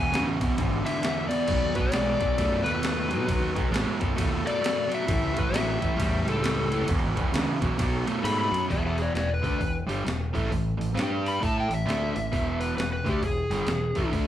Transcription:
Already playing: E2 B2 B3 D4 F#4 G#4 G#5
0.12 D2 E2 C#3, snare, ride
0.41 B1 E2 B2, kick, ride
0.57 G#1 E2 D3, kick, ride
0.85 E2 D3 E5, ride
1.01 E2 D3, snare, ride
1.29 E2 B2 D5, ride
1.46 B1 B2 C#3 F#3 D#4 F#4 A4, kick, crash
1.61 D#2
1.75 B1 B2 F#3 B4, kick, ride
1.92 B1 B2 G#3 D5, snare, ride
2.20 B1 B2 F#3, kick, ride
2.38 F#2 B2 A3, kick, ride
2.64 D#2 B2 A3 B4, ride
2.82 B2 A3, snare, ride
3.10 B2 F#3, ride
3.20 B2, snare
3.27 B1 B2 F#3, kick, ride
3.40 D#2
3.55 B1 B2 F#3, kick, ride
3.71 A1 B2 G#3, ride
3.76 snare
4.00 F#2 B2 F#3, kick, ride
4.15 B2 A3, kick, ride
4.19 D#2
4.45 B2 A3 D5, ride
4.60 B2 A3, ride
4.66 snare
4.88 B2 F#3, ride
4.95 E5
5.02 snare
5.07 A1 A2 E3 C#4 E4 G4 B4, kick, ride
5.22 C#2
5.33 A1 A2 E3, kick, ride
5.39 B4
5.52 A1 A2 F#3, ride
5.56 E5, snare
5.80 A1 A2 E3, kick, ride
5.96 E2 A2 G3, kick, ride
6.24 C#2 A2 G3, ride
6.29 A4
6.42 A2 G3, snare, ride
6.71 A2 E3, ride
6.82 F#1, snare
6.88 E1 E2 B2 D4 F#4 G#4 B4, kick, ride
7.02 G#1
7.16 E1 E2 B2, kick, ride
7.33 D2 E2 C#3, snare, ride
7.61 B1 E2 B2, kick, ride
7.77 B1 B2 F#3 E4 G4 A#4 D5, kick, ride
7.94 D#4 F#4 A4 C#5
8.06 B2 A3, ride
8.24 G#2 B2 A3 B5, ride
8.41 B5
8.51 F#2 B2 F#3, ride
8.68 E1 E2 B2 E3 G#4 E5, kick, open hi-hat
8.86 G#4 E5
8.98 B4 D5, open hi-hat
9.14 E1 E2 B2 B4 D5, snare, open hi-hat
9.34 B4
9.43 D2 D3 A3 D4, kick, open hi-hat
9.59 E1 E2 B2, kick, open hi-hat
9.87 G1 G2 D3 G3, open hi-hat
10.05 E1 E2 B2, snare, open hi-hat
10.33 A1 A2 E3 A3, kick, open hi-hat
10.46 snare
10.51 A1 A2 E3, kick, open hi-hat
10.78 A1 A2 E3, open hi-hat
10.94 G2 G3 D4 G4, open hi-hat
10.99 snare
11.26 B5, open hi-hat
11.41 A2 A3 E4 A4, kick, open hi-hat
11.45 A5
11.60 G5
11.69 A1 A2 E3, open hi-hat
11.74 E5
11.86 D2 D3 A3 D4, open hi-hat
11.90 snare
12.15 A1 A2 E3, open hi-hat
12.32 E1 E2 B2 E3, kick, open hi-hat
12.60 B4, open hi-hat
12.77 E1 E2 B2 B4, snare, open hi-hat
12.93 B4
13.04 D2 D3 A3 D4, kick, open hi-hat
13.09 G4
13.22 E1 E2 B2 G#4, kick, open hi-hat
13.50 G1 G2 D3 G3, open hi-hat
13.67 E1 E2 B2, snare, open hi-hat
13.95 A1 A2 E3 A3, kick, open hi-hat
14.13 D2 D3 A3 D4, kick, open hi-hat

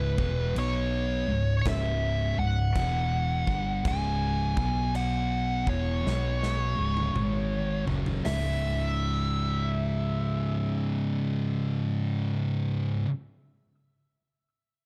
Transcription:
Already playing: C#1 C#2 G#2 C#3 B4
0.18 E1 E2 B2 E3, kick
0.55 B1 B2 F#3 B3, crash
0.59 C#5
1.27 C#1 C#2 G#2
1.61 C#5, crash
1.66 C#1 C#2 G#2 C#3 E5, kick, snare
2.37 C#1 C#2 G#2 F#5
2.76 E1 E2 B2 E3, kick, crash
3.47 G1 G2 D3 G3, kick
3.85 C#1 C#2 G#2 C#3 G#5, kick, crash
4.57 B1 B2 F#3 B3, kick
4.95 F#5, crash
5.67 E1 E2 B2 E3 C#5, kick
6.06 B1 B2 F#3 B3, snare
6.43 snare
6.78 C#1 C#2 G#2 C#3
6.97 high tom
7.15 G#1 G#2 D#3 G#3, mid tom
7.87 F#1 F#2 C#3 F#3, floor tom
8.06 floor tom
8.24 C#1 C#2 G#2 E5, snare, open hi-hat
8.28 C#3

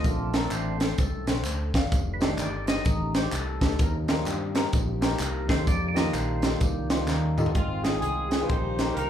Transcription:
Already playing: C4 A4
0.04 A#1 A#2 A3 C4 D4 F4, kick, closed hi-hat, tambourine
0.34 C4 D4 A4 A#4, snare, closed hi-hat, tambourine
0.51 A1 C5, clap, closed hi-hat, tambourine
0.80 C4 D4 A4 C5, snare, closed hi-hat, tambourine
0.98 C2 A4, kick, closed hi-hat, tambourine
1.27 A#1 C4 D4 A4 C5, snare, closed hi-hat, tambourine
1.45 D2 A4 C5, clap, closed hi-hat, tambourine
1.74 G1 D5 F5, kick, snare, closed hi-hat, tambourine
1.91 F1 D#3 A3 G4, kick, closed hi-hat, tambourine
2.14 B4
2.20 D#3 G3 A3 D4 D#4 G4 A4 C5, snare, closed hi-hat, tambourine
2.38 G1 D5, clap, closed hi-hat, tambourine
2.67 D4 D#4 G4 C5 D#5, snare, closed hi-hat, tambourine
2.85 A1 D#4, kick, closed hi-hat, tambourine
3.15 D4 D#4 G4 C5, snare, closed hi-hat, tambourine
3.32 C2 A4, clap, closed hi-hat, tambourine
3.61 D2 D4 D#4 G4 A4, kick, snare, closed hi-hat, tambourine
3.79 D#2 D#3 A#3 C4 D#4 A#4, kick, closed hi-hat, tambourine
4.08 F3 G3 C4 D#4 G4 A#4, snare, closed hi-hat, tambourine
4.26 G2, clap, closed hi-hat, tambourine
4.55 C4 D#4 G4 A#4, snare, closed hi-hat, tambourine
4.73 A#1, kick, closed hi-hat, tambourine
5.01 C4 D#4 G4 A#4, snare, closed hi-hat, tambourine
5.20 C2 A#4, clap, closed hi-hat, tambourine
5.48 D#2 C4 D#4 G4 A4 C5, kick, snare, closed hi-hat, tambourine
5.67 F2 D#4 F4 D5, kick, closed hi-hat, tambourine
5.89 D5
5.94 D#3 G3 A#3 D#4 F4 G4 A#4 D#5, snare, closed hi-hat, tambourine
6.13 A#1 C5, clap, closed hi-hat, tambourine
6.42 D#4 F4 G4 A4, snare, closed hi-hat, tambourine
6.61 C2 G4, kick, closed hi-hat, tambourine
6.90 D#4 F4 G4 C5, snare, closed hi-hat, tambourine
7.08 D#2, snare, clap, tambourine
7.38 D#4 F4 G4 A4, mid tom, tambourine
7.46 floor tom
7.54 G#1 G#2 D#3 G#3 C4 D#4 F4, kick, closed hi-hat
7.83 C4 D#4 F4 G#4, snare, closed hi-hat
8.00 C2 G#4, closed hi-hat
8.29 C4 D#4 F4 G#4, snare, closed hi-hat
8.40 C4 D#4 F4 G#4 B4
8.47 A#1 A#2 G3 A#3 D#4 G4 C5, kick, closed hi-hat
8.79 A#3 D#4 G4 A#4, snare, closed hi-hat
8.87 A#3 D#4 G4 A#4
8.94 C2 D#4 G4 A#4, closed hi-hat

